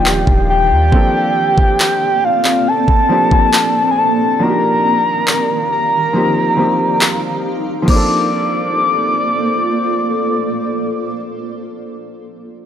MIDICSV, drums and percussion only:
0, 0, Header, 1, 2, 480
1, 0, Start_track
1, 0, Key_signature, -2, "major"
1, 0, Tempo, 869565
1, 510, Time_signature, 4, 2, 24, 8
1, 6987, End_track
2, 0, Start_track
2, 0, Title_t, "Drums"
2, 32, Note_on_c, 9, 39, 104
2, 87, Note_off_c, 9, 39, 0
2, 151, Note_on_c, 9, 36, 87
2, 206, Note_off_c, 9, 36, 0
2, 510, Note_on_c, 9, 36, 106
2, 565, Note_off_c, 9, 36, 0
2, 870, Note_on_c, 9, 36, 82
2, 925, Note_off_c, 9, 36, 0
2, 993, Note_on_c, 9, 39, 94
2, 1048, Note_off_c, 9, 39, 0
2, 1350, Note_on_c, 9, 39, 68
2, 1405, Note_off_c, 9, 39, 0
2, 1590, Note_on_c, 9, 36, 78
2, 1645, Note_off_c, 9, 36, 0
2, 1829, Note_on_c, 9, 36, 83
2, 1885, Note_off_c, 9, 36, 0
2, 1950, Note_on_c, 9, 39, 108
2, 2006, Note_off_c, 9, 39, 0
2, 2912, Note_on_c, 9, 39, 101
2, 2967, Note_off_c, 9, 39, 0
2, 3870, Note_on_c, 9, 39, 105
2, 3925, Note_off_c, 9, 39, 0
2, 4349, Note_on_c, 9, 49, 75
2, 4350, Note_on_c, 9, 36, 96
2, 4404, Note_off_c, 9, 49, 0
2, 4405, Note_off_c, 9, 36, 0
2, 6987, End_track
0, 0, End_of_file